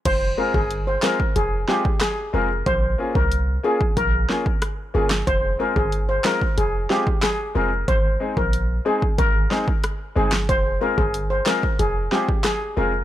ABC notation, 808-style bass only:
X:1
M:4/4
L:1/16
Q:1/4=92
K:Fm
V:1 name="808-style bass" clef=bass
F,,,2 z G,,,3 z2 F,,,2 z4 F,,,2 | B,,,2 z C,,3 z2 B,,,2 z4 G,,,2 | F,,,2 z G,,,3 z2 F,,,2 z4 F,,,2 | A,,,2 z B,,,3 z2 A,,,2 z4 G,,,2 |
F,,,2 z G,,,3 z2 F,,,2 z4 F,,,2 |]